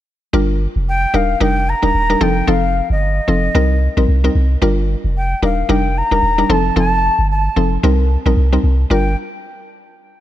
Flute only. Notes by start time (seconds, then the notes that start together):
0.89 G5
1.16 F5
1.42 G5
1.69 A#5
2.23 G5
2.49 F5
2.92 D#5
5.17 G5
5.44 F5
5.71 G5
5.98 A#5
6.52 A5
6.78 A5
7.31 A5
8.92 G5